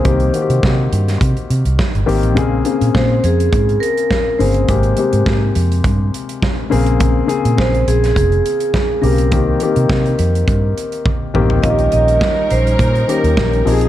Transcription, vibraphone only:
X:1
M:4/4
L:1/8
Q:1/4=104
K:Ebmix
V:1 name="Vibraphone"
c2 z6 | z2 c A2 B2 c- | c2 z6 | z2 c A A3 B- |
B6 z2 | e e2 c2 B2 A |]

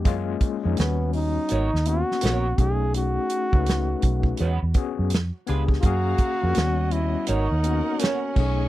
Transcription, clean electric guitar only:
X:1
M:4/4
L:1/8
Q:"Swing 16ths" 1/4=83
K:G#dor
V:1 name="Clean electric guitar"
z4 [B,FAc] z [B,FAc] z | z4 [G,CFB] z2 [_A,=D=F_c] | z4 [B,FAc] z [B,FAc] z |]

